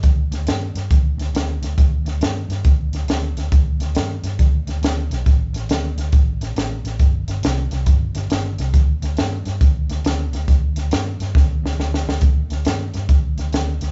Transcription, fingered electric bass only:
X:1
M:4/4
L:1/8
Q:"Swing" 1/4=138
K:G
V:1 name="Fingered electric bass" clef=bass
D,, D,, G,, G,, D,, D,, D,, D,, | D,, D,, G,, G,, D,, D,, D,, D,, | D,, D,, G,, G,, D,, D,, D,, B,,, | A,,, A,,, D,, D,, A,,, A,,, A,,, A,,, |
G,,, G,,, C,, C,, G,,, G,,, G,,, C,, | D,, D,, G,, G,, D,, D,, D,, D,, | D,, D,, G,, G,, D,, D,, D,, D,, | D,, D,, G,, G,, D,, D,, D,, D,, |]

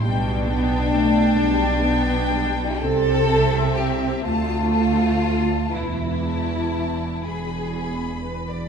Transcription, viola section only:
X:1
M:6/8
L:1/16
Q:3/8=40
K:Gmix
V:1 name="Viola section"
G,2 B,2 A,2 G,2 B,2 G,2 | C6 A,6 | E,8- E, z3 |]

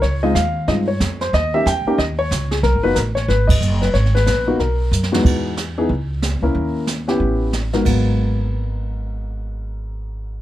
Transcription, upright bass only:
X:1
M:4/4
L:1/8
Q:"Swing" 1/4=184
K:G#m
V:1 name="Upright bass" clef=bass
C,,2 D,,2 =G,,2 ^E,,2 | D,,2 E,, z D,,2 C,,2 | (3B,,, G,,, F,,, =A,,,2 G,,,2 F,,,2 | G,,,2 A,,,2 B,,,2 F,,2 |
E,,4 C,,3 C,, | D,,4 =A,,,4 | G,,,8- | G,,,8 |]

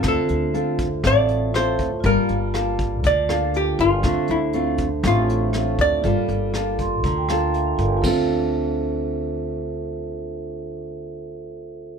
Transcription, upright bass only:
X:1
M:4/4
L:1/16
Q:1/4=120
K:Dm
V:1 name="Upright bass" clef=bass
D,, z D,,6 A,,,6 D,,2 | G,,, z G,,,6 D,,6 G,,,2 | D,, z D,,6 A,,,6 D,,2 | G,,, z G,,,6 D,,6 G,,,2 |
D,,16- | D,,16 |]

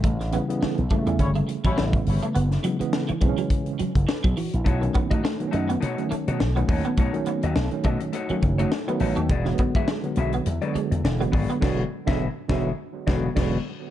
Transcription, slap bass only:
X:1
M:4/4
L:1/16
Q:"Swing 16ths" 1/4=104
K:Bmix
V:1 name="Slap bass" clef=bass
A,,,3 z2 B,,, z E,, =G,,,2 z A,,, A,,,2 G,,, z | F,,,2 z4 B,,, z4 F,,, z B,,, z ^A,,, | B,,,2 z4 F,,2 B,, z2 B,, B,,,2 D,, z | B,,, z2 D,, B,,, z B,, z3 F,,,2 z2 A,,, D,, |
E,,,2 z4 B,,,2 E,, z2 E,, E,,,2 G,,, z | E,,,2 z E,,,2 z E,,,2 z2 E,,,2 E,,,2 z2 |]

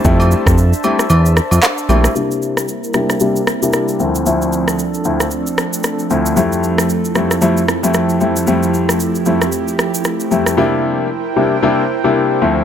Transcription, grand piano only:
X:1
M:4/4
L:1/16
Q:"Swing 16ths" 1/4=114
K:Cmix
V:1 name="Grand piano"
[G,A,CE]4 z2 [G,A,CE] z6 z [G,A,CE] z | [C,G,B,DE]4 z2 [C,G,B,DE] z [C,G,B,DE] z2 [C,G,B,DE]3 [D,,F,A,CE]2 | [D,,F,A,CE]4 z2 [D,,F,A,CE] z6 z [D,,F,A,CE]2 | [F,,G,A,CE]4 z2 [F,,G,A,CE] z [F,,G,A,CE] z2 [F,,G,A,CE]3 [F,,G,A,CE]2 |
[F,,G,A,CE]4 z2 [F,,G,A,CE] z6 z [F,,G,A,CE]2 | [C,G,B,DE]4 z2 [C,G,B,DE] z [C,G,B,DE] z2 [C,G,B,DE]3 [D,,F,A,CE]2 |]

